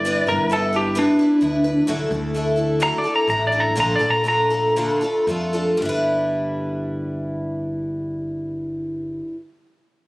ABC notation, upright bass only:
X:1
M:4/4
L:1/8
Q:1/4=118
K:G
V:1 name="Upright bass" clef=bass
G,,, G,,,4 z D,,2 | D,, D,,4 z A,,,2 | _B,,, B,,,4 z =F,,2 | G,,,8- |
G,,,8 |]